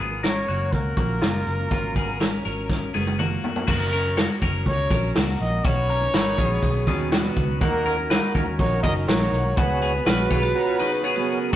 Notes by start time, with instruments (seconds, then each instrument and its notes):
Already playing: steel-string acoustic guitar G#2 C#3 F#3 C#4 F4
0.00 fingered electric bass G#1, clean electric guitar B3 G#4
0.10 steel-string acoustic guitar F#3 C#4 F4 A#4
0.23 clean electric guitar C#4 A#4, trumpet C#5, snare, closed hi-hat
0.47 fingered electric bass F#1, steel-string acoustic guitar F#3 C#4 F4 A#4, clean electric guitar A#3 F#4, closed hi-hat
0.72 fingered electric bass C#2, trumpet A#4, kick, closed hi-hat
0.96 fingered electric bass A#1, steel-string acoustic guitar F#3 C#4 F4 A#4, clean electric guitar A#3 F#4, kick, closed hi-hat
1.21 fingered electric bass F#1, steel-string acoustic guitar F#3 C#4 F4 A#4, clean electric guitar A#3 F4, snare, closed hi-hat
1.47 fingered electric bass F#1, closed hi-hat
1.58 steel-string acoustic guitar F#3 C#4 F4 A#4
1.70 fingered electric bass G#1, steel-string acoustic guitar G#2 C#3 F#3 C#4 F4 A#4, clean electric guitar A#3 F4, kick, closed hi-hat
1.95 fingered electric bass G#1, clean electric guitar B3 G#4, kick, closed hi-hat
2.07 steel-string acoustic guitar F#3 C#4 F4 A#4
2.20 clean electric guitar C#4 A#4, snare, closed hi-hat
2.43 fingered electric bass G#1, steel-string acoustic guitar F#3 C#4 F4 A#4, clean electric guitar C#4 A#4, closed hi-hat
2.70 kick, snare
2.93 fingered electric bass F#1, steel-string acoustic guitar F#3 C#4 F4 A#4, clean electric guitar B3 G#4, high tom
3.07 high tom
3.18 steel-string acoustic guitar F#3 C#4 F4 A#4, clean electric guitar A#3 F#4, mid tom
3.44 floor tom
3.55 steel-string acoustic guitar F#3 C#4 F4 A#4, floor tom
3.67 fingered electric bass F#1, steel-string acoustic guitar F#3 C#4 F#4 A#4, clean electric guitar A#3 F#4, trumpet A#4, kick, crash
3.93 clean electric guitar C#4 A#4, hi-hat pedal, open hi-hat
4.05 steel-string acoustic guitar C#4 F#4 A#4
4.17 clean electric guitar F#4 C#5, snare, hi-hat pedal, open hi-hat
4.42 fingered electric bass F#1, steel-string acoustic guitar F#3 C#4 F#4 A#4, clean electric guitar C#4 A#4, kick, hi-hat pedal, open hi-hat
4.66 fingered electric bass C#2, trumpet C#5, kick, hi-hat pedal, open hi-hat
4.91 fingered electric bass A#1, steel-string acoustic guitar F#3 C#4 F#4 A#4, clean electric guitar C#4 A#4, kick, hi-hat pedal, open hi-hat
5.15 fingered electric bass C#2, clean electric guitar A#3 F#4, snare, hi-hat pedal, open hi-hat
5.27 steel-string acoustic guitar F#3 C#4 F#4 A#4
5.40 fingered electric bass A#1, trumpet D#5, hi-hat pedal, open hi-hat
5.63 fingered electric bass B1, steel-string acoustic guitar F#3 C#4 D#4 B4, clean electric guitar B3 F#4, trumpet C#5, kick, hi-hat pedal, open hi-hat
5.89 clean electric guitar C#4 A#4, hi-hat pedal, open hi-hat
6.00 steel-string acoustic guitar F#3 C#4 D#4 B4
6.14 fingered electric bass G#1, clean electric guitar D#4 B4, vibraphone A#4, snare, hi-hat pedal, open hi-hat
6.36 fingered electric bass A#1, steel-string acoustic guitar F#3 C#4 D#4 B4, clean electric guitar B3 G#4, vibraphone G#4, kick, hi-hat pedal, open hi-hat
6.63 fingered electric bass B1, vibraphone G#4, kick, hi-hat pedal, open hi-hat
6.86 fingered electric bass D#2, steel-string acoustic guitar B2 D#3 F#3 C#4 D#4 B4, clean electric guitar B3 G#4, vibraphone F#4, kick, hi-hat pedal, open hi-hat
7.12 clean electric guitar B3 F#4, vibraphone F#4, snare, hi-hat pedal, open hi-hat
7.23 steel-string acoustic guitar B2 D#3 F#3 C#4 D#4 B4
7.37 fingered electric bass C#2, kick, hi-hat pedal, open hi-hat
7.59 steel-string acoustic guitar F#3 D#4 F#4 A#4, transistor combo organ A#3 D#4 F#4 A#4, clean electric guitar A#3 F#4, trumpet A#4, kick, hi-hat pedal, open hi-hat
7.86 clean electric guitar C#4 A#4, hi-hat pedal, open hi-hat
7.97 steel-string acoustic guitar D#4 F#4 A#4
8.10 transistor combo organ A#3 D#4 F#4 A#4, clean electric guitar D#4 B4, snare, hi-hat pedal, open hi-hat
8.34 fingered electric bass D#2, steel-string acoustic guitar F#3 D#4 F#4 A#4, clean electric guitar C#4 A#4, kick, hi-hat pedal, open hi-hat
8.59 fingered electric bass A#1, transistor combo organ A#3 D#4 F#4 A#4, trumpet C#5, kick, hi-hat pedal, open hi-hat
8.83 fingered electric bass F#1, steel-string acoustic guitar D#3 F#3 D#4 F#4 A#4, clean electric guitar C#4 A#4, trumpet D#5, kick, hi-hat pedal, open hi-hat
9.08 fingered electric bass A#1, transistor combo organ A#3 D#4 F#4 A#4, clean electric guitar A#3 F#4, trumpet C#5, snare, hi-hat pedal, open hi-hat
9.21 steel-string acoustic guitar D#3 F#3 D#4 F#4 A#4
9.32 fingered electric bass B1, hi-hat pedal, open hi-hat
9.56 fingered electric bass C#2, steel-string acoustic guitar F#3 B3 F#4 G#4, transistor combo organ B3 C#4 F#4 G#4, clean electric guitar B3 F#4, trumpet B4, kick, hi-hat pedal, open hi-hat
9.81 clean electric guitar B3 G#4, hi-hat pedal, open hi-hat
9.94 steel-string acoustic guitar B3 F#4 G#4
10.06 fingered electric bass A#1, transistor combo organ B3 C#4 F#4 G#4, vibraphone F4, clean electric guitar F#4 B4, snare, hi-hat pedal, open hi-hat
10.19 vibraphone F#4
10.30 fingered electric bass B1, steel-string acoustic guitar F#3 B3 F#4 G#4, clean electric guitar F4 C#5, vibraphone G#4, kick, hi-hat pedal, open hi-hat
10.43 vibraphone F#4
10.54 transistor combo organ B3 C#4 F#4 A#5, vibraphone F#4
10.67 vibraphone F4
10.79 steel-string acoustic guitar C#3 F#3 B3 F#4 G#4, clean electric guitar D#4 B4, vibraphone G#4
10.92 vibraphone F#4
11.03 transistor combo organ B3 C#4 F#4 G#4, clean electric guitar B3 G#4, vibraphone G#4
11.16 steel-string acoustic guitar C#3 F#3 B3 F#4 G#4, vibraphone F#4
11.29 trumpet A#4